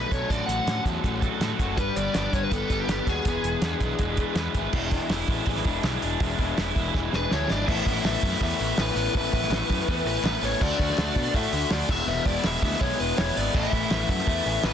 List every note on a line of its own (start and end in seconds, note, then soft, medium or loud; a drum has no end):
0.00 0.28 B2 medium
0.00 0.28 F#3 medium
0.00 0.85 F#3 medium
0.00 0.30 A3 medium
0.00 0.28 B3 medium
0.00 0.67 D4 medium
0.00 1.22 D4 medium
0.00 0.30 F#4 medium
0.00 0.12 B4 medium
0.00 0.29 B4 medium
0.11 0.23 B1 medium
0.11 0.30 A4 medium
0.11 0.30 C#5 medium
0.11 kick medium
0.11 closed hi-hat medium
0.28 0.41 A1 medium
0.28 1.20 A2 medium
0.28 1.23 A2 medium
0.28 1.21 D3 medium
0.28 1.20 F#4 medium
0.28 1.19 A4 medium
0.28 0.49 D5 medium
0.28 kick loud
0.28 closed hi-hat medium
0.46 0.59 A1 medium
0.46 0.82 F#5 loud
0.46 closed hi-hat medium
0.67 0.78 A2 medium
0.67 1.60 C#4 medium
0.67 snare loud
0.67 closed hi-hat medium
0.85 0.97 E2 medium
0.85 1.21 F#3 medium
0.85 kick medium
0.85 closed hi-hat medium
1.04 1.27 A1 medium
1.04 1.40 A3 medium
1.04 kick medium
1.04 closed hi-hat medium
1.21 1.38 A2 medium
1.21 1.39 D3 medium
1.21 1.78 F#3 medium
1.21 1.78 D4 medium
1.21 1.39 F#4 medium
1.21 1.39 A4 medium
1.21 kick medium
1.21 closed hi-hat medium
1.40 1.76 A2 medium
1.40 1.52 A2 medium
1.40 1.76 D3 medium
1.40 1.78 A3 medium
1.40 1.77 F#4 medium
1.40 1.78 A4 medium
1.40 snare loud
1.40 closed hi-hat medium
1.59 1.77 F#1 medium
1.59 1.78 F#4 medium
1.59 kick medium
1.59 closed hi-hat medium
1.76 1.89 G1 loud
1.76 2.68 G3 medium
1.76 2.32 G3 medium
1.76 2.71 B3 medium
1.76 2.72 D4 medium
1.76 1.96 B4 medium
1.76 kick loud
1.76 closed hi-hat medium
1.81 2.70 B4 medium
1.96 2.08 G1 medium
1.96 2.13 D5 loud
1.96 closed hi-hat medium
2.14 2.26 G1 medium
2.14 3.29 D4 medium
2.14 2.34 D5 loud
2.14 snare loud
2.14 closed hi-hat medium
2.33 2.45 G1 loud
2.33 2.70 G3 medium
2.33 2.43 C#5 medium
2.33 kick medium
2.33 closed hi-hat medium
2.43 2.53 B4 medium
2.51 2.63 G1 loud
2.51 2.89 B3 medium
2.51 2.81 A4 medium
2.51 kick medium
2.51 closed hi-hat medium
2.70 2.81 G1 medium
2.70 3.26 G3 medium
2.70 2.91 B3 medium
2.70 2.90 D4 medium
2.70 2.92 B4 medium
2.70 kick medium
2.70 closed hi-hat medium
2.74 2.88 G3 medium
2.80 2.87 G4 medium
2.88 3.00 G1 medium
2.88 3.25 G3 medium
2.88 4.00 B3 medium
2.88 3.29 B3 medium
2.88 3.28 D4 medium
2.88 3.09 G4 medium
2.88 snare loud
2.88 closed hi-hat medium
2.93 3.29 B4 medium
3.07 3.19 D#2 medium
3.07 3.26 F#4 medium
3.07 4.38 G#4 medium
3.07 kick medium
3.07 closed hi-hat medium
3.25 3.37 E1 medium
3.25 4.18 E2 medium
3.25 4.17 E2 medium
3.25 4.17 E3 medium
3.25 4.18 G#3 medium
3.25 4.18 B3 loud
3.25 4.18 D4 medium
3.25 kick loud
3.25 closed hi-hat medium
3.30 4.17 B4 medium
3.43 3.55 E1 medium
3.43 closed hi-hat medium
3.61 3.73 E2 medium
3.61 4.55 D4 medium
3.61 snare loud
3.61 closed hi-hat medium
3.80 3.92 B1 medium
3.80 4.18 E3 medium
3.80 kick medium
3.80 closed hi-hat medium
3.99 4.22 E1 medium
3.99 4.36 G#3 medium
3.99 kick loud
3.99 closed hi-hat medium
4.17 4.73 E3 medium
4.17 4.36 E3 medium
4.17 4.36 G#3 medium
4.17 4.36 B3 medium
4.17 4.36 D4 medium
4.17 4.35 B4 medium
4.17 kick medium
4.17 closed hi-hat medium
4.21 4.35 E2 medium
4.35 4.47 E2 medium
4.35 4.72 E2 medium
4.35 4.72 E3 medium
4.35 4.73 G#3 medium
4.35 4.74 G#3 medium
4.35 4.73 B3 medium
4.35 4.73 D4 medium
4.35 snare loud
4.35 closed hi-hat medium
4.39 4.74 B4 medium
4.54 4.66 G#1 medium
4.54 4.74 E4 medium
4.54 kick medium
4.54 closed hi-hat medium
4.73 4.98 E1 medium
4.73 5.65 E2 medium
4.73 4.94 E2 medium
4.73 4.93 B2 medium
4.73 4.93 E3 medium
4.73 4.93 G#3 loud
4.73 4.92 D4 medium
4.73 4.92 E4 loud
4.73 kick loud
4.73 crash loud
4.91 5.69 E2 medium
4.91 5.48 B2 medium
4.91 5.29 E3 medium
4.91 5.29 G#3 medium
4.91 5.29 D4 medium
4.91 5.28 E4 medium
4.91 kick medium
4.91 open hi-hat medium
5.09 5.22 E1 medium
5.09 6.06 E4 medium
5.09 snare loud
5.09 open hi-hat medium
5.27 5.40 A1 medium
5.27 5.67 E3 medium
5.27 5.82 G#3 medium
5.27 5.65 G#3 medium
5.27 5.65 D4 medium
5.27 5.65 E4 medium
5.27 kick medium
5.27 open hi-hat medium
5.46 5.59 A1 medium
5.46 6.39 E3 medium
5.46 kick medium
5.46 open hi-hat medium
5.57 snare soft
5.64 5.78 E1 medium
5.64 5.82 E3 medium
5.64 5.83 G#3 medium
5.64 6.02 D4 medium
5.64 5.83 D4 medium
5.64 5.85 E4 medium
5.64 kick medium
5.64 open hi-hat medium
5.83 5.96 B1 loud
5.83 6.04 E3 medium
5.83 6.74 G#3 medium
5.83 6.02 G#3 medium
5.83 6.01 D4 medium
5.83 6.02 E4 medium
5.83 snare loud
5.83 open hi-hat medium
6.02 6.15 E1 medium
6.02 6.20 E3 medium
6.02 6.20 G#3 medium
6.02 6.20 D4 medium
6.02 6.95 D4 medium
6.02 6.20 E4 medium
6.02 open hi-hat medium
6.20 6.33 E1 medium
6.20 6.40 E2 medium
6.20 7.13 E2 medium
6.20 6.39 B2 medium
6.20 6.39 E3 medium
6.20 6.39 G#3 medium
6.20 6.38 D4 medium
6.20 6.38 E4 loud
6.20 kick loud
6.20 open hi-hat medium
6.38 6.51 E1 medium
6.38 6.95 E2 medium
6.38 6.95 B2 medium
6.38 6.77 E3 medium
6.38 6.76 G#3 medium
6.38 6.75 D4 medium
6.38 6.74 E4 medium
6.38 kick medium
6.38 open hi-hat medium
6.57 6.70 E1 medium
6.57 7.49 E4 medium
6.57 snare loud
6.57 open hi-hat medium
6.76 6.88 E1 medium
6.76 7.13 E3 medium
6.76 7.30 G#3 medium
6.76 7.12 G#3 medium
6.76 7.11 D4 medium
6.76 7.10 E4 medium
6.76 kick medium
6.76 open hi-hat medium
6.93 7.07 E1 loud
6.93 7.67 E3 medium
6.93 kick loud
6.93 snare medium
7.11 7.25 E1 medium
7.11 7.29 E3 medium
7.11 7.30 G#3 medium
7.11 7.31 D4 medium
7.11 7.48 D4 medium
7.11 7.32 E4 medium
7.11 snare medium
7.16 7.33 B4 medium
7.31 7.44 D2 medium
7.31 7.50 E3 medium
7.31 7.68 G#3 medium
7.31 7.50 G#3 medium
7.31 7.49 D4 medium
7.31 7.49 E4 medium
7.31 7.50 C#5 loud
7.31 snare medium
7.50 7.63 G#1 medium
7.50 7.68 E3 medium
7.50 7.68 G#3 medium
7.50 7.68 D4 medium
7.50 7.67 D4 medium
7.50 7.67 E4 medium
7.50 7.67 D5 loud
7.50 snare medium
7.67 7.80 A1 loud
7.67 8.60 A2 medium
7.67 8.40 A2 medium
7.67 8.05 E3 medium
7.67 8.05 A3 medium
7.67 8.06 B3 loud
7.67 8.06 E4 medium
7.67 8.06 E5 loud
7.67 kick loud
7.67 crash loud
7.86 7.98 A1 medium
7.86 8.78 E4 medium
7.86 kick medium
7.86 open hi-hat medium
8.04 8.16 A1 medium
8.04 8.41 E3 medium
8.04 8.42 A3 medium
8.04 8.41 B3 medium
8.04 8.42 E4 medium
8.04 8.42 E5 loud
8.04 snare loud
8.04 clap medium
8.04 open hi-hat medium
8.23 8.34 F#2 medium
8.23 8.77 B3 medium
8.23 kick medium
8.23 open hi-hat medium
8.32 snare soft
8.40 8.52 E2 medium
8.40 8.78 A2 medium
8.40 8.77 E3 medium
8.40 8.96 A3 medium
8.40 8.61 A3 medium
8.40 8.60 B3 loud
8.40 8.59 E4 loud
8.40 8.80 E5 loud
8.40 kick loud
8.40 open hi-hat medium
8.59 8.72 A1 medium
8.59 9.51 E3 medium
8.59 8.78 A3 medium
8.59 8.78 B3 medium
8.59 8.79 E4 medium
8.59 open hi-hat medium
8.77 8.89 A1 medium
8.77 9.15 E3 medium
8.77 8.99 A3 medium
8.77 9.69 B3 medium
8.77 8.97 B3 medium
8.77 8.96 E4 medium
8.77 9.16 B4 loud
8.77 snare loud
8.77 clap medium
8.77 open hi-hat medium
8.95 9.07 A1 medium
8.95 9.50 A3 medium
8.95 9.16 A3 medium
8.95 9.16 B3 medium
8.95 9.16 E4 medium
8.95 open hi-hat medium
9.15 9.26 A1 loud
9.15 10.06 A2 medium
9.15 9.70 A2 medium
9.15 9.51 E3 loud
9.15 9.53 A3 loud
9.15 9.52 B3 medium
9.15 9.52 E4 loud
9.15 10.06 B4 loud
9.15 kick loud
9.15 open hi-hat medium
9.33 9.44 A1 medium
9.33 10.25 E4 medium
9.33 kick medium
9.33 open hi-hat medium
9.43 snare soft
9.50 9.62 A1 loud
9.50 9.88 E3 medium
9.50 9.89 A3 medium
9.50 9.88 A3 medium
9.50 9.89 B3 medium
9.50 9.89 E4 medium
9.50 snare loud
9.50 clap medium
9.50 open hi-hat medium
9.70 9.81 F#2 loud
9.70 10.25 B3 medium
9.70 kick medium
9.70 clap medium
9.70 open hi-hat medium
9.80 snare soft
9.88 9.99 E2 medium
9.88 10.25 A2 medium
9.88 10.23 E3 loud
9.88 10.07 A3 loud
9.88 10.42 A3 medium
9.88 10.06 B3 loud
9.88 10.04 E4 loud
9.88 kick loud
9.88 open hi-hat medium
10.05 10.17 A1 medium
10.05 10.62 E3 medium
10.05 10.24 A3 medium
10.05 10.25 B3 medium
10.05 10.25 E4 medium
10.05 10.25 B4 medium
10.05 open hi-hat medium
10.23 10.35 A1 loud
10.23 10.60 E3 medium
10.23 10.44 A3 medium
10.23 10.43 B3 medium
10.23 10.62 B3 medium
10.23 10.42 E4 medium
10.23 10.44 B4 loud
10.23 snare loud
10.23 clap medium
10.23 open hi-hat medium
10.42 10.54 A1 medium
10.42 10.61 A3 medium
10.42 10.61 B3 medium
10.42 10.60 E4 medium
10.42 10.62 C#5 medium
10.42 open hi-hat medium
10.61 10.73 D2 medium
10.61 10.96 D3 medium
10.61 11.52 D3 medium
10.61 10.97 A3 loud
10.61 10.97 D4 loud
10.61 10.98 F#4 loud
10.61 11.35 D5 loud
10.61 kick loud
10.61 crash loud
10.79 10.91 D2 medium
10.79 11.72 F#4 medium
10.79 kick medium
10.79 open hi-hat medium
10.90 snare soft
10.97 11.09 D2 medium
10.97 11.33 D3 medium
10.97 11.34 A3 medium
10.97 11.35 D4 medium
10.97 11.35 F#4 medium
10.97 snare loud
10.97 clap medium
10.97 open hi-hat medium
11.16 11.27 B2 loud
11.16 11.69 D4 medium
11.16 kick medium
11.16 clap medium
11.16 open hi-hat medium
11.34 11.46 A2 loud
11.34 11.70 D3 medium
11.34 11.90 A3 medium
11.34 11.54 A3 loud
11.34 11.53 D4 loud
11.34 11.51 F#4 loud
11.34 11.72 E5 loud
11.34 kick loud
11.34 open hi-hat medium
11.53 11.64 D2 medium
11.53 11.89 D3 medium
11.53 11.70 A3 medium
11.53 11.71 D4 medium
11.53 11.71 F#4 medium
11.53 open hi-hat medium
11.70 11.82 D2 loud
11.70 11.88 D3 medium
11.70 11.89 A3 medium
11.70 11.89 D4 medium
11.70 11.89 F#4 medium
11.70 11.90 D5 loud
11.70 snare loud
11.70 clap loud
11.70 open hi-hat medium
11.89 12.00 E1 medium
11.89 12.06 E2 medium
11.89 12.05 E2 medium
11.89 12.05 B2 medium
11.89 12.07 E3 medium
11.89 12.07 G#3 medium
11.89 12.07 B3 medium
11.89 12.08 E4 medium
11.89 12.07 E5 loud
11.89 kick loud
11.89 crash loud
12.07 12.19 E1 loud
12.07 12.62 E2 medium
12.07 12.99 E2 medium
12.07 12.62 B2 loud
12.07 12.44 E3 medium
12.07 12.43 G#3 medium
12.07 12.45 B3 loud
12.07 12.45 E4 loud
12.07 12.26 E5 loud
12.25 12.37 E1 medium
12.25 13.73 E4 medium
12.25 12.46 D5 loud
12.25 kick medium
12.25 open hi-hat medium
12.44 12.56 E1 medium
12.44 12.82 E3 medium
12.44 12.81 G#3 medium
12.44 12.82 B3 medium
12.44 12.82 E4 medium
12.44 12.80 E5 loud
12.44 snare loud
12.44 clap loud
12.44 open hi-hat medium
12.62 12.74 D2 loud
12.62 13.18 B3 medium
12.62 kick medium
12.62 open hi-hat medium
12.73 snare soft
12.81 12.92 B1 medium
12.81 13.18 E2 medium
12.81 13.18 B2 medium
12.81 13.01 E3 medium
12.81 13.37 G#3 medium
12.81 13.00 G#3 loud
12.81 13.00 B3 loud
12.81 12.99 E4 loud
12.81 13.00 C#5 medium
12.81 kick loud
12.81 open hi-hat medium
12.99 13.11 E1 medium
12.99 14.46 E3 medium
12.99 13.17 E3 medium
12.99 13.18 G#3 medium
12.99 13.19 B3 medium
12.99 13.20 E4 medium
12.99 13.17 B4 loud
12.99 open hi-hat medium
13.17 13.30 E1 medium
13.17 13.38 E3 medium
13.17 13.37 G#3 medium
13.17 13.59 B3 medium
13.17 13.37 B3 medium
13.17 13.36 E4 medium
13.17 13.36 C#5 loud
13.17 snare loud
13.17 clap medium
13.17 open hi-hat medium
13.36 13.48 G#1 medium
13.36 13.55 E3 medium
13.36 13.55 G#3 medium
13.36 13.54 G#3 medium
13.36 13.55 B3 medium
13.36 13.56 E4 medium
13.36 13.56 D5 medium
13.36 open hi-hat medium
13.54 13.66 A1 loud
13.54 14.27 A2 medium
13.54 14.47 A2 medium
13.54 13.91 E3 loud
13.54 13.92 A3 loud
13.54 13.93 B3 medium
13.54 13.93 E4 loud
13.54 14.09 E5 loud
13.54 kick loud
13.54 crash loud
13.72 13.84 A1 medium
13.72 14.64 E4 medium
13.72 kick medium
13.72 open hi-hat medium
13.91 14.02 A1 loud
13.91 14.27 E3 medium
13.91 14.28 A3 medium
13.91 14.28 B3 medium
13.91 14.29 E4 medium
13.91 snare loud
13.91 clap medium
13.91 open hi-hat medium
14.09 14.20 F#2 loud
14.09 14.63 B3 medium
14.09 14.66 E5 medium
14.09 kick medium
14.09 clap medium
14.09 open hi-hat medium
14.19 snare soft
14.26 14.39 E2 medium
14.26 14.64 A2 medium
14.26 14.63 E3 medium
14.26 14.73 A3 medium
14.26 14.48 A3 medium
14.26 14.46 B3 loud
14.26 14.45 E4 medium
14.26 kick loud
14.26 open hi-hat medium
14.45 14.57 A1 loud
14.45 14.73 E3 medium
14.45 14.64 A3 medium
14.45 14.64 B3 medium
14.45 14.65 E4 medium
14.45 open hi-hat medium
14.63 14.73 A1 loud
14.63 14.73 E3 medium
14.63 14.73 A3 medium
14.63 14.73 B3 medium
14.63 14.73 E4 medium
14.63 14.73 B4 loud
14.63 snare loud
14.63 clap medium
14.63 open hi-hat medium